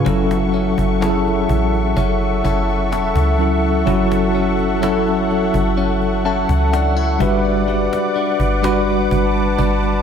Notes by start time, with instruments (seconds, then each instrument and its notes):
Already playing: analog synth pad C#6
0.05 808-style bass F#1, tine electric piano F#3 C#4 E4 A4, clean electric guitar F#3, analog synth pad A4 E5 F#5, cajon bass
0.31 cajon slap
0.54 clean electric guitar C#4, cajon slap
0.78 808-style bass F#1, cajon bass
1.00 tine electric piano F#3 C#4 E4 G#4, clean electric guitar C#4 E4 A4, cajon slap
1.10 tine electric piano A4
1.26 cajon slap
1.49 808-style bass A1, cajon bass
1.73 cajon slap
1.97 808-style bass F#1, clean electric guitar C#4, cajon bass
2.20 cajon slap
2.44 808-style bass F#1, clean electric guitar C#4 E4 A4, cajon bass
2.69 cajon slap
2.92 808-style bass E1, clean electric guitar E4, cajon slap
3.16 808-style bass C#2, cajon bass
3.38 tine electric piano F#3 C#4 E4 A4, cajon slap
3.86 808-style bass F#1, tine electric piano F#3 C#4 E4 F#4, clean electric guitar F#3, cajon bass
4.12 cajon slap
4.35 clean electric guitar C#4, cajon slap
4.58 cajon slap
4.81 tine electric piano F#3 C#4 E4 A4, clean electric guitar C#4 E4 A4, cajon slap
5.07 cajon slap
5.30 cajon slap
5.54 808-style bass F#1, cajon bass
5.77 clean electric guitar C#4, cajon slap
6.01 cajon slap
6.25 clean electric guitar C#4 E4 A4, tine electric piano A5, cajon slap
6.49 808-style bass C#2, cajon bass
6.73 clean electric guitar D4, tine electric piano F#5, cajon slap
6.96 clean electric guitar E4, cajon slap
7.19 808-style bass G1, tine electric piano G3 D4 F#4 B4 E5, clean electric guitar G3, analog synth pad B4 D5 D6, cajon bass
7.68 clean electric guitar G3, cajon slap
7.93 cajon slap
8.16 clean electric guitar D4, cajon slap
8.40 808-style bass G1, cajon bass
8.62 tine electric piano G3 D4 F#4 B4, clean electric guitar D4 F#4 B4, cajon slap
8.88 cajon slap
9.11 808-style bass G1, analog synth pad A5, cajon bass
9.35 cajon slap
9.59 808-style bass G1, clean electric guitar D4, cajon bass
9.82 cajon slap